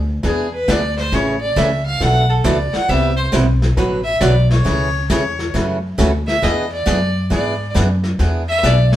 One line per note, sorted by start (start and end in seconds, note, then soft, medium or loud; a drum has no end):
0.00 0.22 D2 loud
0.23 0.66 E2 medium
0.23 0.45 E3 medium
0.23 0.46 B3 medium
0.23 0.46 D4 medium
0.23 0.46 G#4 medium
0.23 0.52 G#4 medium
0.23 brush sweep medium
0.23 kick soft
0.23 snare soft
0.54 0.72 B4 medium
0.68 1.11 D2 medium
0.68 0.79 E3 medium
0.68 0.80 B3 medium
0.68 0.80 D4 medium
0.68 0.80 G#4 medium
0.68 0.98 D5 medium
0.68 kick soft
0.68 snare medium
0.68 hi-hat pedal medium
0.97 1.16 C5 medium
0.97 snare soft
1.12 1.55 A1 medium
1.12 1.34 C#3 medium
1.12 1.34 E3 medium
1.12 1.34 A3 medium
1.12 1.35 C#4 medium
1.12 1.35 G#4 medium
1.12 1.40 C#5 medium
1.12 brush sweep medium
1.12 kick soft
1.12 snare soft
1.41 1.58 D5 medium
1.56 1.99 C#2 loud
1.56 1.68 C#3 medium
1.56 1.68 E3 medium
1.56 1.68 A3 medium
1.56 1.68 C#4 medium
1.56 1.68 G#4 medium
1.56 1.85 E5 medium
1.56 kick soft
1.56 snare medium
1.56 hi-hat pedal medium
1.85 2.03 F5 loud
2.00 2.43 B1 medium
2.00 2.23 B2 medium
2.00 2.23 E3 medium
2.00 2.23 A3 medium
2.00 2.23 D4 medium
2.00 2.23 A4 medium
2.00 2.31 F#5 loud
2.00 brush sweep soft
2.00 kick soft
2.00 snare soft
2.30 2.48 A4 medium
2.44 2.72 C#2 medium
2.44 2.56 B2 medium
2.44 2.56 E3 medium
2.44 2.56 A3 medium
2.44 2.57 D4 medium
2.44 2.57 A4 medium
2.44 2.74 D5 medium
2.44 kick soft
2.44 snare medium
2.44 hi-hat pedal medium
2.73 2.90 F#5 loud
2.73 muted upright bass stroke soft
2.73 snare soft
2.88 3.32 C2 medium
2.88 3.11 C3 medium
2.88 3.11 G3 medium
2.88 3.11 B3 medium
2.88 3.11 E4 medium
2.88 3.11 G4 medium
2.88 3.16 E5 medium
2.88 brush sweep soft
2.88 kick soft
2.88 snare soft
3.16 3.26 C5 loud
3.32 3.76 B1 medium
3.32 3.44 C3 medium
3.32 3.44 G3 medium
3.32 3.45 B3 medium
3.32 3.45 E4 medium
3.32 3.45 G4 medium
3.32 kick soft
3.32 snare medium
3.32 hi-hat pedal medium
3.62 snare soft
3.77 4.20 A1 medium
3.77 3.99 D3 medium
3.77 3.99 F#3 medium
3.77 4.00 B3 medium
3.77 4.00 F#4 medium
3.77 4.00 B4 medium
3.77 brush sweep soft
3.77 kick soft
3.77 snare soft
4.04 4.22 E5 loud
4.21 4.64 B1 loud
4.21 4.33 D3 medium
4.21 4.33 F#3 medium
4.21 4.33 B3 medium
4.21 4.33 F#4 medium
4.21 4.34 B4 medium
4.21 4.50 D5 medium
4.21 kick soft
4.21 snare medium
4.21 hi-hat pedal medium
4.50 5.06 C#5 medium
4.50 snare soft
4.64 5.08 C#2 medium
4.64 4.87 C#3 medium
4.64 4.87 E3 medium
4.64 4.87 A3 medium
4.64 4.88 C#4 medium
4.64 4.88 G#4 medium
4.64 brush sweep soft
4.64 kick soft
4.64 snare soft
5.10 5.53 E2 medium
5.10 5.21 C#3 medium
5.10 5.22 E3 medium
5.10 5.22 A3 medium
5.10 5.22 C#4 medium
5.10 5.22 G#4 medium
5.10 5.51 C#5 medium
5.10 kick soft
5.10 snare medium
5.10 hi-hat pedal medium
5.39 snare soft
5.54 5.97 F#2 medium
5.54 5.76 C#3 medium
5.54 5.76 E3 medium
5.54 5.76 A3 medium
5.54 5.76 C#4 medium
5.54 5.77 F#4 medium
5.54 brush sweep soft
5.54 kick soft
5.54 snare soft
5.98 6.41 D2 medium
5.98 6.10 C#3 medium
5.98 6.10 E3 medium
5.98 6.10 A3 medium
5.98 6.10 C#4 medium
5.98 6.10 F#4 medium
5.98 kick soft
5.98 snare medium
5.98 hi-hat pedal medium
6.27 6.45 E5 loud
6.27 snare soft
6.42 6.85 E2 medium
6.42 6.64 E3 medium
6.42 6.65 B3 medium
6.42 6.65 D4 medium
6.42 6.65 G#4 medium
6.42 6.71 D#5 medium
6.42 brush sweep medium
6.42 kick soft
6.42 snare soft
6.72 7.27 D5 medium
6.86 7.29 F#2 loud
6.86 6.98 E3 medium
6.86 6.98 B3 medium
6.86 6.98 D4 medium
6.86 6.99 G#4 medium
6.86 kick soft
6.86 snare medium
6.86 hi-hat pedal medium
7.30 7.74 G#2 medium
7.30 7.53 E3 medium
7.30 7.53 B3 medium
7.30 7.53 D4 medium
7.30 7.53 G#4 medium
7.30 7.72 D5 medium
7.30 brush sweep soft
7.30 kick soft
7.30 snare soft
7.75 8.18 F#2 medium
7.75 7.86 E3 medium
7.75 7.87 B3 medium
7.75 7.87 D4 medium
7.75 7.87 G#4 medium
7.75 kick soft
7.75 snare medium
7.75 hi-hat pedal medium
8.04 snare soft
8.19 8.62 E2 medium
8.19 8.41 E3 medium
8.19 8.42 B3 medium
8.19 8.42 D4 medium
8.19 8.42 G#4 medium
8.19 brush sweep medium
8.19 kick soft
8.19 snare soft
8.48 8.67 E5 loud
8.63 8.96 B1 loud
8.63 8.75 E3 medium
8.63 8.75 B3 medium
8.63 8.75 D4 medium
8.63 8.76 G#4 medium
8.63 8.93 D5 medium
8.63 kick soft
8.63 snare medium
8.63 hi-hat pedal medium
8.92 snare medium